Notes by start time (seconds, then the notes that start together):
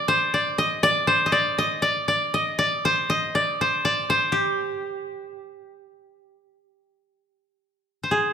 Already playing: D5
0.08 C5
0.34 D5
0.58 D#5
0.83 D5
1.07 C5
1.26 D#5
1.32 D5
1.58 D#5
1.82 D5
2.08 D5
2.34 D#5
2.59 D5
2.85 C5
3.10 D#5
3.35 D5
3.61 C5
3.85 D5
4.10 C5
4.32 G4
8.03 C5
8.11 G#4